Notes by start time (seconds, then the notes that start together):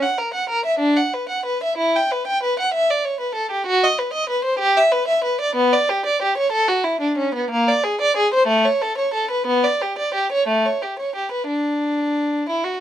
0.03 F#5
0.18 A#4
0.34 F#5
0.50 A#4
0.66 E5
0.79 D4
0.97 F#5
1.14 B4
1.29 F#5
1.46 B4
1.63 E5
1.77 E4
1.96 G5
2.11 B4
2.27 G5
2.43 B4
2.59 F#5
2.74 E5
2.90 D5
3.05 C#5
3.20 B4
3.35 A4
3.51 G4
3.66 F#4
3.84 D#5
3.99 B4
4.13 D#5
4.30 B4
4.45 C5
4.59 G4
4.77 E5
4.92 B4
5.08 E5
5.24 B4
5.41 D5
5.55 B3
5.73 D5
5.90 G4
6.06 D5
6.22 G4
6.37 C#5
6.52 A4
6.68 F#4
6.84 E4
7.01 D4
7.18 C#4
7.35 B3
7.51 A#3
7.68 D5
7.84 G#4
8.01 D5
8.17 G#4
8.34 C5
8.47 A3
8.65 C#5
8.82 A4
8.98 C#5
9.14 A4
9.31 B4
9.47 B3
9.64 D5
9.81 G4
9.98 D5
10.14 G4
10.32 C#5
10.48 A3
10.66 C#5
10.82 G4
10.99 C#5
11.16 G4
11.32 B4
11.48 D4
12.49 E4
12.64 F#4